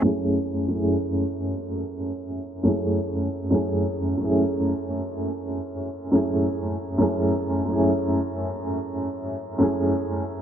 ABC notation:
X:1
M:4/4
L:1/16
Q:"Swing 16ths" 1/4=69
K:F#m
V:1 name="Upright piano"
[F,,A,CEG]3 [F,,A,CEG]8- [F,,A,CEG] [F,,A,CEG]4 | [F,,A,CEG]3 [F,,A,CEG]8- [F,,A,CEG] [F,,A,CEG]4 | [F,,A,CEG]3 [F,,A,CEG]8- [F,,A,CEG] [F,,A,CEG]4 |]